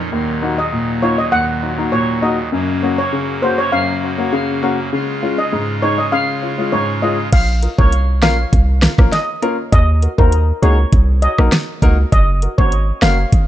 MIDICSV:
0, 0, Header, 1, 6, 480
1, 0, Start_track
1, 0, Key_signature, -5, "minor"
1, 0, Tempo, 600000
1, 99, Time_signature, 4, 2, 24, 8
1, 10780, End_track
2, 0, Start_track
2, 0, Title_t, "Steel pan"
2, 0, Program_c, 0, 114
2, 466, Note_on_c, 0, 75, 68
2, 563, Note_off_c, 0, 75, 0
2, 820, Note_on_c, 0, 73, 73
2, 928, Note_off_c, 0, 73, 0
2, 946, Note_on_c, 0, 75, 71
2, 1043, Note_off_c, 0, 75, 0
2, 1057, Note_on_c, 0, 78, 97
2, 1403, Note_off_c, 0, 78, 0
2, 1537, Note_on_c, 0, 73, 80
2, 1647, Note_off_c, 0, 73, 0
2, 1779, Note_on_c, 0, 75, 74
2, 1888, Note_off_c, 0, 75, 0
2, 2387, Note_on_c, 0, 73, 73
2, 2483, Note_off_c, 0, 73, 0
2, 2739, Note_on_c, 0, 72, 70
2, 2848, Note_off_c, 0, 72, 0
2, 2865, Note_on_c, 0, 73, 83
2, 2962, Note_off_c, 0, 73, 0
2, 2978, Note_on_c, 0, 77, 90
2, 3324, Note_off_c, 0, 77, 0
2, 4307, Note_on_c, 0, 75, 70
2, 4403, Note_off_c, 0, 75, 0
2, 4659, Note_on_c, 0, 73, 78
2, 4768, Note_off_c, 0, 73, 0
2, 4785, Note_on_c, 0, 75, 67
2, 4882, Note_off_c, 0, 75, 0
2, 4898, Note_on_c, 0, 77, 98
2, 5244, Note_off_c, 0, 77, 0
2, 5379, Note_on_c, 0, 73, 77
2, 5488, Note_off_c, 0, 73, 0
2, 5619, Note_on_c, 0, 75, 72
2, 5728, Note_off_c, 0, 75, 0
2, 5861, Note_on_c, 0, 77, 99
2, 5969, Note_off_c, 0, 77, 0
2, 6227, Note_on_c, 0, 73, 83
2, 6324, Note_off_c, 0, 73, 0
2, 6580, Note_on_c, 0, 77, 88
2, 6689, Note_off_c, 0, 77, 0
2, 7298, Note_on_c, 0, 75, 82
2, 7644, Note_off_c, 0, 75, 0
2, 7779, Note_on_c, 0, 75, 97
2, 7888, Note_off_c, 0, 75, 0
2, 8146, Note_on_c, 0, 70, 87
2, 8243, Note_off_c, 0, 70, 0
2, 8499, Note_on_c, 0, 73, 80
2, 8608, Note_off_c, 0, 73, 0
2, 8978, Note_on_c, 0, 75, 80
2, 9087, Note_off_c, 0, 75, 0
2, 9698, Note_on_c, 0, 75, 92
2, 9808, Note_off_c, 0, 75, 0
2, 10064, Note_on_c, 0, 73, 83
2, 10162, Note_off_c, 0, 73, 0
2, 10417, Note_on_c, 0, 77, 89
2, 10527, Note_off_c, 0, 77, 0
2, 10780, End_track
3, 0, Start_track
3, 0, Title_t, "Grand piano"
3, 0, Program_c, 1, 0
3, 98, Note_on_c, 1, 39, 80
3, 337, Note_on_c, 1, 58, 69
3, 339, Note_on_c, 1, 63, 66
3, 340, Note_on_c, 1, 66, 78
3, 440, Note_off_c, 1, 58, 0
3, 441, Note_off_c, 1, 63, 0
3, 442, Note_off_c, 1, 66, 0
3, 461, Note_off_c, 1, 39, 0
3, 578, Note_on_c, 1, 46, 71
3, 818, Note_on_c, 1, 58, 73
3, 820, Note_on_c, 1, 63, 62
3, 821, Note_on_c, 1, 65, 79
3, 920, Note_off_c, 1, 58, 0
3, 921, Note_off_c, 1, 63, 0
3, 922, Note_off_c, 1, 65, 0
3, 941, Note_off_c, 1, 46, 0
3, 1059, Note_on_c, 1, 39, 66
3, 1297, Note_on_c, 1, 63, 42
3, 1300, Note_on_c, 1, 66, 47
3, 1349, Note_off_c, 1, 63, 0
3, 1351, Note_off_c, 1, 66, 0
3, 1421, Note_off_c, 1, 39, 0
3, 1425, Note_on_c, 1, 58, 66
3, 1427, Note_on_c, 1, 63, 61
3, 1428, Note_on_c, 1, 66, 74
3, 1516, Note_off_c, 1, 58, 0
3, 1517, Note_off_c, 1, 63, 0
3, 1517, Note_off_c, 1, 66, 0
3, 1540, Note_on_c, 1, 46, 71
3, 1776, Note_on_c, 1, 58, 72
3, 1778, Note_on_c, 1, 63, 67
3, 1779, Note_on_c, 1, 66, 81
3, 1879, Note_off_c, 1, 58, 0
3, 1880, Note_off_c, 1, 63, 0
3, 1881, Note_off_c, 1, 66, 0
3, 1902, Note_off_c, 1, 46, 0
3, 2018, Note_on_c, 1, 42, 82
3, 2258, Note_on_c, 1, 58, 72
3, 2260, Note_on_c, 1, 61, 67
3, 2261, Note_on_c, 1, 66, 79
3, 2361, Note_off_c, 1, 58, 0
3, 2361, Note_off_c, 1, 61, 0
3, 2362, Note_off_c, 1, 66, 0
3, 2381, Note_off_c, 1, 42, 0
3, 2501, Note_on_c, 1, 49, 68
3, 2740, Note_on_c, 1, 58, 71
3, 2741, Note_on_c, 1, 61, 65
3, 2742, Note_on_c, 1, 66, 81
3, 2841, Note_off_c, 1, 58, 0
3, 2842, Note_off_c, 1, 61, 0
3, 2843, Note_off_c, 1, 66, 0
3, 2863, Note_off_c, 1, 49, 0
3, 2981, Note_on_c, 1, 42, 72
3, 3220, Note_on_c, 1, 61, 44
3, 3222, Note_on_c, 1, 66, 48
3, 3270, Note_off_c, 1, 61, 0
3, 3272, Note_off_c, 1, 66, 0
3, 3342, Note_off_c, 1, 42, 0
3, 3345, Note_on_c, 1, 58, 70
3, 3347, Note_on_c, 1, 61, 59
3, 3349, Note_on_c, 1, 66, 72
3, 3436, Note_off_c, 1, 58, 0
3, 3437, Note_off_c, 1, 61, 0
3, 3438, Note_off_c, 1, 66, 0
3, 3460, Note_on_c, 1, 49, 88
3, 3699, Note_on_c, 1, 58, 83
3, 3701, Note_on_c, 1, 61, 77
3, 3702, Note_on_c, 1, 66, 98
3, 3801, Note_off_c, 1, 58, 0
3, 3802, Note_off_c, 1, 61, 0
3, 3802, Note_off_c, 1, 66, 0
3, 3822, Note_off_c, 1, 49, 0
3, 3942, Note_on_c, 1, 49, 83
3, 4179, Note_on_c, 1, 56, 72
3, 4180, Note_on_c, 1, 61, 67
3, 4180, Note_on_c, 1, 65, 77
3, 4281, Note_off_c, 1, 56, 0
3, 4281, Note_off_c, 1, 61, 0
3, 4282, Note_off_c, 1, 65, 0
3, 4303, Note_off_c, 1, 49, 0
3, 4421, Note_on_c, 1, 44, 70
3, 4660, Note_on_c, 1, 56, 71
3, 4660, Note_on_c, 1, 61, 66
3, 4662, Note_on_c, 1, 63, 79
3, 4761, Note_off_c, 1, 56, 0
3, 4761, Note_off_c, 1, 61, 0
3, 4763, Note_off_c, 1, 63, 0
3, 4783, Note_off_c, 1, 44, 0
3, 4900, Note_on_c, 1, 49, 71
3, 5139, Note_on_c, 1, 61, 42
3, 5141, Note_on_c, 1, 65, 47
3, 5190, Note_off_c, 1, 61, 0
3, 5191, Note_off_c, 1, 65, 0
3, 5262, Note_off_c, 1, 49, 0
3, 5265, Note_on_c, 1, 56, 68
3, 5265, Note_on_c, 1, 61, 60
3, 5267, Note_on_c, 1, 65, 75
3, 5356, Note_off_c, 1, 56, 0
3, 5356, Note_off_c, 1, 61, 0
3, 5357, Note_off_c, 1, 65, 0
3, 5380, Note_on_c, 1, 44, 74
3, 5619, Note_on_c, 1, 56, 74
3, 5620, Note_on_c, 1, 61, 69
3, 5622, Note_on_c, 1, 65, 83
3, 5721, Note_off_c, 1, 56, 0
3, 5721, Note_off_c, 1, 61, 0
3, 5722, Note_off_c, 1, 65, 0
3, 5742, Note_off_c, 1, 44, 0
3, 6098, Note_on_c, 1, 65, 48
3, 6101, Note_on_c, 1, 70, 54
3, 6149, Note_off_c, 1, 65, 0
3, 6151, Note_off_c, 1, 70, 0
3, 6226, Note_on_c, 1, 58, 72
3, 6226, Note_on_c, 1, 61, 63
3, 6227, Note_on_c, 1, 65, 65
3, 6229, Note_on_c, 1, 70, 78
3, 6316, Note_off_c, 1, 58, 0
3, 6317, Note_off_c, 1, 61, 0
3, 6317, Note_off_c, 1, 65, 0
3, 6318, Note_off_c, 1, 70, 0
3, 6577, Note_on_c, 1, 58, 76
3, 6577, Note_on_c, 1, 61, 73
3, 6578, Note_on_c, 1, 65, 71
3, 6578, Note_on_c, 1, 70, 88
3, 6680, Note_off_c, 1, 58, 0
3, 6680, Note_off_c, 1, 61, 0
3, 6680, Note_off_c, 1, 65, 0
3, 6680, Note_off_c, 1, 70, 0
3, 7059, Note_on_c, 1, 65, 54
3, 7061, Note_on_c, 1, 70, 62
3, 7110, Note_off_c, 1, 65, 0
3, 7111, Note_off_c, 1, 70, 0
3, 7186, Note_on_c, 1, 58, 76
3, 7187, Note_on_c, 1, 61, 65
3, 7187, Note_on_c, 1, 65, 66
3, 7188, Note_on_c, 1, 70, 82
3, 7276, Note_off_c, 1, 58, 0
3, 7277, Note_off_c, 1, 61, 0
3, 7277, Note_off_c, 1, 65, 0
3, 7277, Note_off_c, 1, 70, 0
3, 7538, Note_on_c, 1, 58, 78
3, 7539, Note_on_c, 1, 61, 74
3, 7539, Note_on_c, 1, 65, 71
3, 7540, Note_on_c, 1, 70, 90
3, 7640, Note_off_c, 1, 58, 0
3, 7641, Note_off_c, 1, 61, 0
3, 7641, Note_off_c, 1, 65, 0
3, 7641, Note_off_c, 1, 70, 0
3, 8017, Note_on_c, 1, 66, 46
3, 8020, Note_on_c, 1, 70, 55
3, 8069, Note_off_c, 1, 66, 0
3, 8071, Note_off_c, 1, 70, 0
3, 8147, Note_on_c, 1, 58, 73
3, 8147, Note_on_c, 1, 63, 67
3, 8148, Note_on_c, 1, 66, 66
3, 8149, Note_on_c, 1, 72, 82
3, 8237, Note_off_c, 1, 58, 0
3, 8237, Note_off_c, 1, 63, 0
3, 8238, Note_off_c, 1, 66, 0
3, 8238, Note_off_c, 1, 72, 0
3, 8498, Note_on_c, 1, 58, 79
3, 8499, Note_on_c, 1, 63, 70
3, 8499, Note_on_c, 1, 66, 73
3, 8500, Note_on_c, 1, 68, 91
3, 8601, Note_off_c, 1, 58, 0
3, 8601, Note_off_c, 1, 63, 0
3, 8601, Note_off_c, 1, 66, 0
3, 8602, Note_off_c, 1, 68, 0
3, 8979, Note_on_c, 1, 66, 47
3, 8982, Note_on_c, 1, 73, 50
3, 9030, Note_off_c, 1, 66, 0
3, 9031, Note_off_c, 1, 73, 0
3, 9106, Note_on_c, 1, 58, 72
3, 9107, Note_on_c, 1, 63, 67
3, 9108, Note_on_c, 1, 66, 65
3, 9109, Note_on_c, 1, 70, 78
3, 9196, Note_off_c, 1, 58, 0
3, 9197, Note_off_c, 1, 63, 0
3, 9197, Note_off_c, 1, 66, 0
3, 9198, Note_off_c, 1, 70, 0
3, 9458, Note_on_c, 1, 58, 96
3, 9458, Note_on_c, 1, 63, 87
3, 9459, Note_on_c, 1, 66, 90
3, 9460, Note_on_c, 1, 70, 105
3, 9560, Note_off_c, 1, 58, 0
3, 9560, Note_off_c, 1, 63, 0
3, 9561, Note_off_c, 1, 66, 0
3, 9562, Note_off_c, 1, 70, 0
3, 9938, Note_on_c, 1, 66, 49
3, 9940, Note_on_c, 1, 70, 54
3, 9990, Note_off_c, 1, 66, 0
3, 9991, Note_off_c, 1, 70, 0
3, 10066, Note_on_c, 1, 58, 75
3, 10066, Note_on_c, 1, 61, 68
3, 10068, Note_on_c, 1, 66, 68
3, 10068, Note_on_c, 1, 72, 81
3, 10156, Note_off_c, 1, 58, 0
3, 10157, Note_off_c, 1, 61, 0
3, 10157, Note_off_c, 1, 66, 0
3, 10157, Note_off_c, 1, 72, 0
3, 10418, Note_on_c, 1, 58, 78
3, 10418, Note_on_c, 1, 61, 73
3, 10420, Note_on_c, 1, 66, 69
3, 10421, Note_on_c, 1, 70, 89
3, 10520, Note_off_c, 1, 58, 0
3, 10521, Note_off_c, 1, 61, 0
3, 10522, Note_off_c, 1, 66, 0
3, 10522, Note_off_c, 1, 70, 0
3, 10780, End_track
4, 0, Start_track
4, 0, Title_t, "Pipe organ"
4, 0, Program_c, 2, 19
4, 0, Note_on_c, 2, 46, 68
4, 0, Note_on_c, 2, 53, 61
4, 80, Note_off_c, 2, 53, 0
4, 98, Note_on_c, 2, 39, 68
4, 98, Note_on_c, 2, 54, 74
4, 1987, Note_off_c, 2, 46, 0
4, 1999, Note_off_c, 2, 39, 0
4, 2000, Note_off_c, 2, 54, 0
4, 2016, Note_on_c, 2, 42, 71
4, 2017, Note_on_c, 2, 49, 63
4, 2017, Note_on_c, 2, 58, 73
4, 3918, Note_off_c, 2, 42, 0
4, 3919, Note_off_c, 2, 58, 0
4, 3938, Note_on_c, 2, 65, 73
4, 3939, Note_on_c, 2, 56, 64
4, 5826, Note_off_c, 2, 49, 0
4, 5840, Note_off_c, 2, 56, 0
4, 5840, Note_off_c, 2, 65, 0
4, 10780, End_track
5, 0, Start_track
5, 0, Title_t, "808-style bass"
5, 0, Program_c, 3, 38
5, 5860, Note_on_c, 3, 34, 112
5, 6143, Note_off_c, 3, 34, 0
5, 6228, Note_on_c, 3, 36, 88
5, 6580, Note_on_c, 3, 34, 88
5, 6592, Note_off_c, 3, 36, 0
5, 6765, Note_off_c, 3, 34, 0
5, 6822, Note_on_c, 3, 36, 97
5, 7104, Note_off_c, 3, 36, 0
5, 7187, Note_on_c, 3, 34, 92
5, 7274, Note_off_c, 3, 34, 0
5, 7780, Note_on_c, 3, 39, 109
5, 8063, Note_off_c, 3, 39, 0
5, 8148, Note_on_c, 3, 39, 88
5, 8419, Note_off_c, 3, 39, 0
5, 8500, Note_on_c, 3, 37, 87
5, 8684, Note_off_c, 3, 37, 0
5, 8740, Note_on_c, 3, 36, 101
5, 9023, Note_off_c, 3, 36, 0
5, 9107, Note_on_c, 3, 34, 88
5, 9194, Note_off_c, 3, 34, 0
5, 9458, Note_on_c, 3, 37, 99
5, 9643, Note_off_c, 3, 37, 0
5, 9699, Note_on_c, 3, 30, 115
5, 9982, Note_off_c, 3, 30, 0
5, 10067, Note_on_c, 3, 32, 95
5, 10339, Note_off_c, 3, 32, 0
5, 10418, Note_on_c, 3, 30, 86
5, 10604, Note_off_c, 3, 30, 0
5, 10660, Note_on_c, 3, 32, 99
5, 10780, Note_off_c, 3, 32, 0
5, 10780, End_track
6, 0, Start_track
6, 0, Title_t, "Drums"
6, 5860, Note_on_c, 9, 36, 117
6, 5860, Note_on_c, 9, 42, 84
6, 5860, Note_on_c, 9, 49, 110
6, 5940, Note_off_c, 9, 36, 0
6, 5940, Note_off_c, 9, 42, 0
6, 5940, Note_off_c, 9, 49, 0
6, 6100, Note_on_c, 9, 42, 60
6, 6180, Note_off_c, 9, 42, 0
6, 6228, Note_on_c, 9, 36, 114
6, 6308, Note_off_c, 9, 36, 0
6, 6340, Note_on_c, 9, 42, 73
6, 6420, Note_off_c, 9, 42, 0
6, 6578, Note_on_c, 9, 37, 102
6, 6582, Note_on_c, 9, 38, 127
6, 6583, Note_on_c, 9, 42, 51
6, 6658, Note_off_c, 9, 37, 0
6, 6662, Note_off_c, 9, 38, 0
6, 6663, Note_off_c, 9, 42, 0
6, 6822, Note_on_c, 9, 36, 90
6, 6823, Note_on_c, 9, 42, 67
6, 6902, Note_off_c, 9, 36, 0
6, 6903, Note_off_c, 9, 42, 0
6, 7056, Note_on_c, 9, 37, 104
6, 7060, Note_on_c, 9, 38, 123
6, 7061, Note_on_c, 9, 42, 62
6, 7136, Note_off_c, 9, 37, 0
6, 7140, Note_off_c, 9, 38, 0
6, 7141, Note_off_c, 9, 42, 0
6, 7187, Note_on_c, 9, 36, 85
6, 7190, Note_on_c, 9, 37, 102
6, 7267, Note_off_c, 9, 36, 0
6, 7270, Note_off_c, 9, 37, 0
6, 7301, Note_on_c, 9, 38, 65
6, 7302, Note_on_c, 9, 42, 79
6, 7381, Note_off_c, 9, 38, 0
6, 7382, Note_off_c, 9, 42, 0
6, 7540, Note_on_c, 9, 42, 53
6, 7620, Note_off_c, 9, 42, 0
6, 7780, Note_on_c, 9, 36, 115
6, 7780, Note_on_c, 9, 42, 86
6, 7860, Note_off_c, 9, 36, 0
6, 7860, Note_off_c, 9, 42, 0
6, 8020, Note_on_c, 9, 42, 59
6, 8100, Note_off_c, 9, 42, 0
6, 8148, Note_on_c, 9, 36, 108
6, 8228, Note_off_c, 9, 36, 0
6, 8259, Note_on_c, 9, 42, 75
6, 8339, Note_off_c, 9, 42, 0
6, 8502, Note_on_c, 9, 42, 50
6, 8582, Note_off_c, 9, 42, 0
6, 8740, Note_on_c, 9, 36, 95
6, 8740, Note_on_c, 9, 42, 69
6, 8820, Note_off_c, 9, 36, 0
6, 8820, Note_off_c, 9, 42, 0
6, 8978, Note_on_c, 9, 42, 61
6, 9058, Note_off_c, 9, 42, 0
6, 9107, Note_on_c, 9, 37, 96
6, 9187, Note_off_c, 9, 37, 0
6, 9215, Note_on_c, 9, 37, 86
6, 9219, Note_on_c, 9, 38, 107
6, 9219, Note_on_c, 9, 42, 82
6, 9295, Note_off_c, 9, 37, 0
6, 9299, Note_off_c, 9, 38, 0
6, 9299, Note_off_c, 9, 42, 0
6, 9458, Note_on_c, 9, 36, 91
6, 9459, Note_on_c, 9, 42, 56
6, 9538, Note_off_c, 9, 36, 0
6, 9539, Note_off_c, 9, 42, 0
6, 9699, Note_on_c, 9, 36, 119
6, 9699, Note_on_c, 9, 42, 88
6, 9779, Note_off_c, 9, 36, 0
6, 9779, Note_off_c, 9, 42, 0
6, 9937, Note_on_c, 9, 42, 62
6, 10017, Note_off_c, 9, 42, 0
6, 10067, Note_on_c, 9, 36, 112
6, 10147, Note_off_c, 9, 36, 0
6, 10177, Note_on_c, 9, 42, 74
6, 10257, Note_off_c, 9, 42, 0
6, 10415, Note_on_c, 9, 37, 106
6, 10419, Note_on_c, 9, 38, 121
6, 10419, Note_on_c, 9, 42, 50
6, 10495, Note_off_c, 9, 37, 0
6, 10499, Note_off_c, 9, 38, 0
6, 10499, Note_off_c, 9, 42, 0
6, 10660, Note_on_c, 9, 36, 92
6, 10660, Note_on_c, 9, 42, 68
6, 10740, Note_off_c, 9, 36, 0
6, 10740, Note_off_c, 9, 42, 0
6, 10780, End_track
0, 0, End_of_file